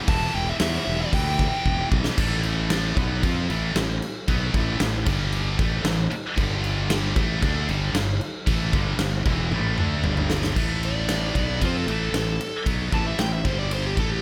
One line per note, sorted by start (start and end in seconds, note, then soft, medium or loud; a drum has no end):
0.08 0.25 E1 medium
0.08 1.11 E2 medium
0.08 1.12 B2 medium
0.08 1.12 E3 loud
0.08 0.35 A5 loud
0.08 kick loud
0.08 open hi-hat medium
0.35 0.51 E1 loud
0.35 0.48 G5 loud
0.49 0.54 E5 medium
0.60 0.77 E2 loud
0.60 1.01 E5 loud
0.60 snare loud
0.60 open hi-hat medium
0.87 1.04 E1 medium
1.02 1.13 D5 medium
1.13 1.46 D2 loud
1.13 2.16 E2 medium
1.13 2.17 B2 medium
1.13 2.17 E3 medium
1.13 1.88 G5 medium
1.13 kick medium
1.13 open hi-hat medium
1.39 kick medium
1.39 snare soft
1.65 1.82 E1 medium
1.65 kick medium
1.92 2.08 B1 medium
1.92 kick loud
2.04 snare loud
2.18 2.93 A1 medium
2.18 2.96 A2 loud
2.18 2.97 E3 medium
2.18 2.97 A3 loud
2.18 kick loud
2.18 crash loud
2.18 crash medium
2.43 crash medium
2.70 snare loud
2.70 crash medium
2.96 3.21 B1 medium
2.96 3.22 B2 medium
2.96 3.22 F#3 medium
2.96 3.23 B3 medium
2.96 kick loud
2.96 crash medium
3.23 3.48 F2 medium
3.23 3.48 F3 medium
3.23 3.49 C4 loud
3.23 3.49 F4 medium
3.23 kick loud
3.23 crash medium
3.50 3.74 A1 medium
3.50 3.75 A2 medium
3.50 3.75 E3 loud
3.50 3.75 A3 loud
3.50 crash medium
3.75 4.00 A1 medium
3.75 3.97 A2 medium
3.75 3.97 E3 medium
3.75 snare loud
3.75 crash medium
4.02 crash medium
4.28 4.53 B1 medium
4.28 4.53 B2 loud
4.28 4.54 F#3 loud
4.28 4.54 B3 medium
4.28 kick loud
4.28 crash medium
4.54 4.78 A1 medium
4.54 4.79 A2 medium
4.54 4.79 E3 loud
4.54 4.80 A3 loud
4.54 kick loud
4.54 crash medium
4.80 5.05 A1 medium
4.80 5.01 A2 medium
4.80 5.01 E3 medium
4.80 snare loud
4.80 crash medium
5.06 5.55 G1 medium
5.06 5.58 G2 medium
5.06 5.58 D3 loud
5.06 5.58 G3 medium
5.06 kick loud
5.06 crash medium
5.32 crash medium
5.58 5.83 A1 medium
5.58 5.83 A2 loud
5.58 5.83 E3 loud
5.58 5.84 A3 loud
5.58 kick loud
5.58 crash medium
5.84 6.09 A1 medium
5.84 6.06 A2 medium
5.84 6.06 E3 medium
5.84 snare loud
5.84 crash medium
6.11 muted distorted electric guitar stroke medium
6.11 muted fingered electric bass stroke soft
6.11 crash medium
6.36 7.12 G1 medium
6.36 7.15 G2 loud
6.36 7.15 D3 loud
6.36 7.15 G3 loud
6.36 kick loud
6.36 crash medium
6.64 crash medium
6.90 snare loud
6.90 crash medium
7.16 7.41 A1 medium
7.16 7.41 A2 medium
7.16 7.42 E3 medium
7.16 7.41 A3 loud
7.16 kick loud
7.16 crash medium
7.42 7.67 D2 loud
7.42 7.68 D3 medium
7.42 7.68 A3 medium
7.42 7.68 D4 loud
7.42 kick loud
7.42 crash medium
7.69 7.93 G1 medium
7.69 7.93 G2 medium
7.69 7.94 D3 loud
7.69 7.94 G3 loud
7.69 crash medium
7.93 8.18 G1 medium
7.93 8.16 G2 medium
7.93 8.16 D3 medium
7.93 snare loud
7.93 crash medium
8.21 crash medium
8.47 8.71 A1 loud
8.47 8.72 A2 medium
8.47 8.73 E3 medium
8.47 8.73 A3 loud
8.47 kick loud
8.47 crash medium
8.73 8.97 G1 medium
8.73 8.98 G2 medium
8.73 8.99 D3 medium
8.73 8.99 G3 loud
8.73 kick loud
8.73 crash medium
8.98 9.23 G1 medium
8.98 9.21 G2 medium
8.98 9.21 D3 medium
8.98 snare loud
8.98 crash medium
9.26 9.50 E1 medium
9.26 9.51 E2 medium
9.26 9.51 B2 medium
9.26 9.52 E3 medium
9.26 kick loud
9.26 crash medium
9.51 9.76 A1 loud
9.51 9.78 A2 loud
9.51 9.78 E3 medium
9.51 9.77 A3 loud
9.51 high tom medium
9.78 10.02 D2 medium
9.78 10.03 D3 medium
9.78 10.04 A3 medium
9.78 10.04 D4 loud
9.78 mid tom medium
10.03 10.53 G1 medium
10.03 10.56 G2 medium
10.03 10.56 D3 medium
10.03 10.56 G3 loud
10.03 mid tom medium
10.17 mid tom medium
10.30 snare loud
10.43 snare medium
10.56 11.31 A1 medium
10.56 11.34 A2 medium
10.56 11.35 E3 medium
10.56 11.35 A3 loud
10.56 kick loud
10.56 crash loud
10.83 11.60 D5 medium
10.83 ride medium
11.09 snare loud
11.09 ride loud
11.35 11.60 B1 medium
11.35 11.61 B2 medium
11.35 11.61 F#3 medium
11.35 11.61 B3 medium
11.35 kick medium
11.35 ride medium
11.61 11.86 F2 medium
11.61 11.87 F3 medium
11.61 11.88 C4 medium
11.61 11.88 F4 loud
11.61 kick medium
11.61 ride loud
11.65 11.76 C5 medium
11.78 12.14 A4 medium
11.87 12.12 A1 medium
11.87 12.12 A2 medium
11.87 12.13 E3 medium
11.87 12.13 A3 loud
11.87 ride medium
12.12 12.37 A1 medium
12.12 12.35 A2 medium
12.12 12.35 E3 medium
12.12 snare loud
12.12 ride loud
12.17 12.66 A4 medium
12.41 ride medium
12.66 12.90 B1 medium
12.66 12.92 B2 medium
12.66 12.92 F#3 medium
12.66 12.92 B3 loud
12.66 kick loud
12.66 ride loud
12.92 13.17 A1 medium
12.92 13.18 A2 medium
12.92 13.18 E3 medium
12.92 13.18 A3 medium
12.92 13.06 A5 medium
12.92 kick loud
12.92 ride medium
13.06 13.19 E5 medium
13.18 13.43 A1 medium
13.18 13.40 A2 medium
13.18 13.40 E3 medium
13.18 13.32 G5 medium
13.18 snare loud
13.18 ride medium
13.33 13.45 E5 medium
13.45 13.94 G1 medium
13.45 13.96 G2 medium
13.45 13.96 D3 medium
13.45 13.96 G3 medium
13.45 13.59 C5 medium
13.45 kick loud
13.45 ride medium
13.59 13.71 D5 medium
13.71 13.85 C5 medium
13.71 ride medium
13.86 13.99 G4 medium
13.96 14.21 A1 medium
13.96 14.22 A2 medium
13.96 14.22 E3 medium
13.96 14.22 A3 loud
13.96 14.11 A4 medium
13.96 kick loud
13.96 ride medium
14.12 14.22 G4 medium